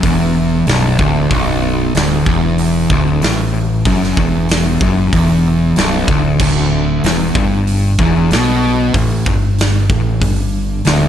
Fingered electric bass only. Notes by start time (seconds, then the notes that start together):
0.03 E1
0.66 B0
0.99 D1
1.31 B0
1.95 D1
2.27 E1
2.90 D1
3.22 A1
3.86 F#1
4.17 E1
4.81 F#1
5.13 E1
5.77 B0
6.08 D1
6.40 D1
7.04 E1
7.35 G1
7.99 E1
8.31 B1
8.94 A1
9.26 G1
9.90 A1
10.21 G1
10.87 D1